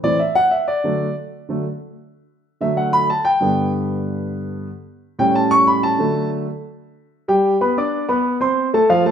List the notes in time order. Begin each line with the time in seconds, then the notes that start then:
0.03 A2 E3 C4 D5
0.19 E5
0.35 F#5
0.51 E5
0.68 D5
0.84 D3 F#3 A3
1.49 D3 F#3 A3
2.61 D3 F#3 A3 E5
2.77 F#5
2.93 B5
3.10 A5
3.25 G5
3.40 G2 D3 B3
5.19 A2 G3 C#4 G5
5.35 A5
5.51 C#6
5.67 B5
5.83 A5
5.98 D3 F#3 A3
7.28 G3 G4 G5
7.61 B3 B4 B5
7.77 D4 D5 D6
8.09 B3 B4 B5
8.40 C4 C5 C6
8.74 A3 A4 A5
8.89 F3 F4 F5
9.05 A3 A4 A5